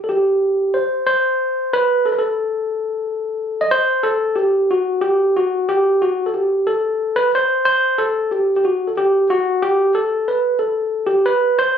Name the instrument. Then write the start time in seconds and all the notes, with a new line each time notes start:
tine electric piano
0.04 A4
0.09 G4
0.74 C5
1.07 C5
1.73 B4
2.06 A4
2.12 B4
2.19 A4
3.61 D#5
3.71 C5
4.03 A4
4.36 G4
4.71 F#4
5.01 G4
5.36 F#4
5.69 G4
6.02 F#4
6.26 A4
6.34 G4
6.67 A4
7.16 B4
7.35 C5
7.65 C5
7.98 A4
8.31 G4
8.56 G4
8.65 F#4
8.87 A4
8.97 G4
9.30 F#4
9.62 G4
9.95 A4
10.28 B4
10.59 A4
11.07 G4
11.26 B4
11.59 C5